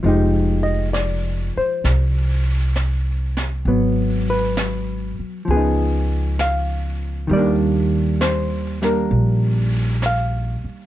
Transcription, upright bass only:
X:1
M:4/4
L:1/8
Q:"Swing" 1/4=66
K:Fdor
V:1 name="Upright bass" clef=bass
F,,,3 z C,,4 | A,,,3 z _D,,4 | E,,4 B,,,3 z |]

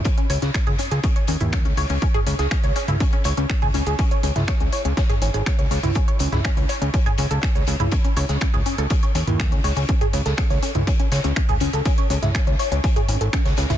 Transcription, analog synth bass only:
X:1
M:4/4
L:1/16
Q:1/4=122
K:C#m
V:1 name="Analog synth bass" clef=bass
z2 C,, C,, z C,, z C,, z2 D,, D,,2 C,, C,, C,, | z2 C,, C,, z C,, z C,, z2 C,, C,, z C,, C,, C,, | z2 C,, C,, z C,, z C,, z2 G,,, G,,, z C,, C,, C,, | z2 C,, C,, z C,, z C,, z2 C,, C,, z C,, C,, C,, |
z2 C,, C,, z C,, z C,, z2 D,, D,,2 C,, C,, C,, | z2 C,, C,, z C,, z C,, z2 C,, C,, z C,, C,, C,, | z2 C,, C,, z C,, z C,, z2 G,,, G,,, z C,, C,, C,, |]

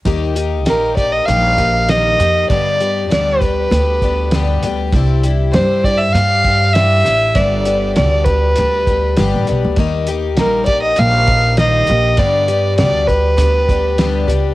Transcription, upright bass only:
X:1
M:4/4
L:1/16
Q:1/4=99
K:Gmix
V:1 name="Upright bass" clef=bass
_E,,4 _B,,,4 B,,,6 F,,2 | G,,4 D,,4 D,,6 D,,2 | C,,4 G,,4 G,,6 A,,,2 | G,,,4 D,,4 D,,4 G,,, A,,, B,,, D,, |
_E,,4 _B,,,4 B,,,6 B,,,2 | G,,4 D,,4 D,,6 ^C,,2 |]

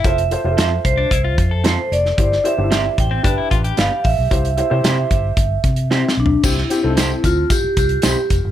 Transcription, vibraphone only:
X:1
M:4/4
L:1/8
Q:1/4=113
K:C
V:1 name="Vibraphone"
e3 c2 z c d- | d e2 g2 z f e- | e6 C D | E3 F G G2 z |]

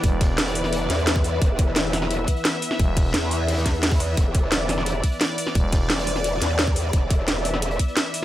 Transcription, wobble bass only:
X:1
M:4/4
L:1/8
Q:1/4=174
K:Clyd
V:1 name="Wobble bass" clef=bass
z2 E,,,3 E,,3 | E,,,4- E,,, z3 | z2 E,,6 | E,,,4- E,,, z3 |
z2 E,,,3 E,,3 | E,,,4- E,,, z3 |]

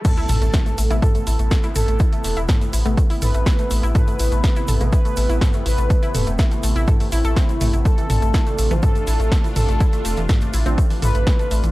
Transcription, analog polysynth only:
X:1
M:4/4
L:1/8
Q:1/4=123
K:Am
V:1 name="Analog polysynth"
A4 A3 A- | A2 z3 B3 | B4 B3 B- | B2 z3 E3 |
A4 A3 A- | A2 z3 B3 |]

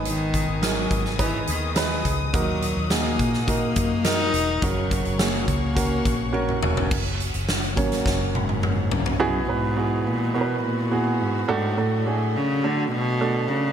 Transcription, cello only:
X:1
M:4/4
L:1/8
Q:1/4=105
K:F#mix
V:1 name="Cello" clef=bass
D,2 F,2 E, D,2 z | F,2 A,2 A,2 D2 | F,2 A, A,4 z | z4 z G,,2 F,, |
F,, G,,2 A,, B,, A,,2 G,, | G,, =A,,2 C, =D, B,,2 C, |]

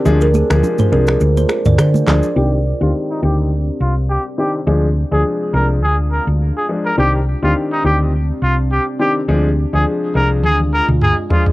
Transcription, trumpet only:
X:1
M:4/4
L:1/16
Q:"Swing 16ths" 1/4=104
K:Cm
V:1 name="Trumpet"
z16 | G z2 F z E G z3 F z G z G z | z3 A z2 B z A z B z2 A z B | G z2 F z E G z3 F z G z G z |
z3 A z2 B z A z B z A z F z |]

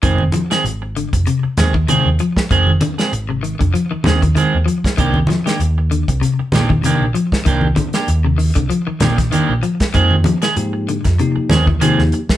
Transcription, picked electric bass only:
X:1
M:4/4
L:1/16
Q:"Swing 16ths" 1/4=97
K:Fdor
V:1 name="Picked electric bass" clef=bass
F,,,2 z2 A,,,3 F,,, z2 E,,2 z E,, z2 | F,,,2 z2 A,,,3 F,,, z2 E,,2 z E,, z2 | C,,2 z2 E,,3 C,, z2 B,,,2 z B,,, z2 | C,,2 z2 E,,3 C,, z2 B,,,2 z B,,, z2 |
F,,2 z2 A,,3 F,, z2 E,,2 z E,, z2 |]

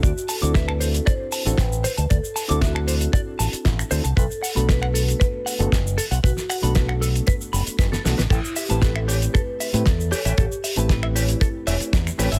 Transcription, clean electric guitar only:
X:1
M:4/4
L:1/16
Q:1/4=116
K:Ador
V:1 name="Clean electric guitar"
d z a d' e a c z d z a z3 c a | d z a d' e a c z d z a z3 c a | B z f b B f A z B z f z3 A f | B z f b B f A z B z b z B A F B |
A z e a B e G z A z e z3 G e | A z e a B e G z A z e z3 G e |]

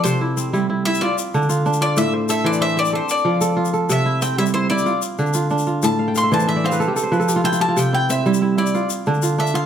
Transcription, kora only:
X:1
M:12/8
L:1/16
Q:3/8=124
K:C
V:1 name="Kora"
A2 E2 C2 E2 E4 F4 D2 F4 F2- | F2 c2 A2 c2 c4 A4 F2 A4 A2- | A2 E2 C2 E2 E4 F4 D2 F4 F2- | F2 f g f e d c e d c B A G A c B A G F E F G F- |
F z E2 C2 E2 E4 F4 D2 F4 F2 |]
V:2 name="Kora" clef=bass
C,4 z2 G,4 E2 z4 D,4 D4 | A,,4 z2 E,4 C2 z4 F,4 F4 | C,4 z2 G,4 E2 z4 D,4 D4 | A,,4 z2 E,4 C2 z4 F,4 F4 |
C,4 z2 G,4 E2 z4 D,4 D4 |]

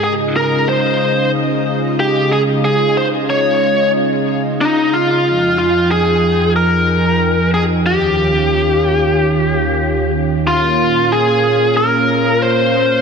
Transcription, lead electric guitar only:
X:1
M:4/4
L:1/8
Q:1/4=92
K:Dblyd
V:1 name="Lead electric guitar"
A B c2 z2 G A | A c d2 z2 E F- | F F A2 B3 A | G6- G z |
F2 A2 B2 c2 |]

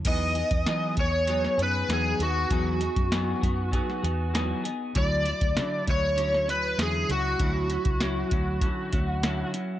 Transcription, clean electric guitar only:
X:1
M:4/4
L:1/8
Q:1/4=98
K:E
V:1 name="Clean electric guitar"
[E,F,B,DG] [B,DG] [E,F,B,DG] [B,DG] [F,B,DG] [B,DG] [E,F,B,DG] [B,DG] | [E,F,B,DG] [B,DG] [E,F,B,DG] [B,DG] [F,B,DG] [B,DG] [E,F,B,DG] [B,DG] | [=D,F,E] [F,E] [D,F,E] [F,CE] [D,F,CE] [F,CE] [D,F,CE] [F,CE] | [=D,F,CE] [F,CE] [F,CE] [F,CE] [D,F,CE] [F,CE] [D,F,CE] [F,CE] |]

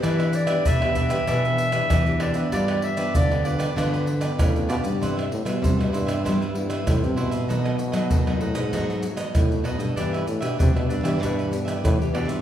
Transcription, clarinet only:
X:1
M:4/4
L:1/8
Q:1/4=97
K:C
V:1 name="Clarinet"
B d e e4 d | d e d B B2 z2 | z8 | z8 |
z8 |]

